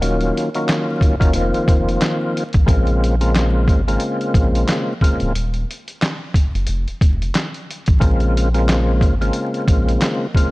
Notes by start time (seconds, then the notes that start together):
0.01 D#1 D#3 F#3 A#3 C#4 F4, closed hi-hat
0.21 closed hi-hat
0.37 closed hi-hat
0.55 D#3 F#3 A#3 C#4 F4, closed hi-hat
0.69 snare, clap, closed hi-hat
1.01 kick, closed hi-hat
1.20 F#1 D#3 F#3 A#3 C#4 F4, kick, closed hi-hat
1.33 F1 D#3 F3 A#3 C4 F4, closed hi-hat
1.54 F1, closed hi-hat
1.68 F1, kick, closed hi-hat
1.89 closed hi-hat
2.01 snare, clap, closed hi-hat
2.37 closed hi-hat
2.53 A1, kick, closed hi-hat
2.66 A#1 C#3 G#3 A#3 C4 F4, kick, closed hi-hat
2.87 closed hi-hat
3.04 closed hi-hat
3.20 C#3 G#3 A#3 C4 F4, closed hi-hat
3.36 snare, clap, closed hi-hat
3.68 G#1, kick, closed hi-hat
3.87 C#3 G#3 A#3 C4 F4, closed hi-hat
4.00 closed hi-hat
4.21 closed hi-hat
4.34 A#1, kick, closed hi-hat
4.55 closed hi-hat
4.68 snare, clap, closed hi-hat
5.01 C#3 G#3 A#3 C4 F4, kick, closed hi-hat
5.20 D1, closed hi-hat
5.35 D#1, closed hi-hat
5.54 closed hi-hat
5.71 closed hi-hat
5.88 closed hi-hat
6.02 snare, clap, closed hi-hat
6.34 kick, closed hi-hat
6.54 F#1, closed hi-hat
6.67 F1, closed hi-hat
6.88 F1, closed hi-hat
7.01 F1, kick, closed hi-hat
7.22 closed hi-hat
7.35 snare, clap, closed hi-hat
7.54 closed hi-hat
7.71 closed hi-hat
7.86 A1, kick, closed hi-hat
8.00 A#1 C#3 G#3 A#3 C4 F4, kick, closed hi-hat
8.20 closed hi-hat
8.37 closed hi-hat
8.54 C#3 G#3 A#3 C4 F4, closed hi-hat
8.69 snare, clap, closed hi-hat
9.01 G#1, kick, closed hi-hat
9.21 C#3 G#3 A#3 C4 F4, closed hi-hat
9.33 closed hi-hat
9.54 closed hi-hat
9.68 A#1, kick, closed hi-hat
9.89 closed hi-hat
10.01 snare, clap, closed hi-hat
10.35 C#3 G#3 A#3 C4 F4, kick, closed hi-hat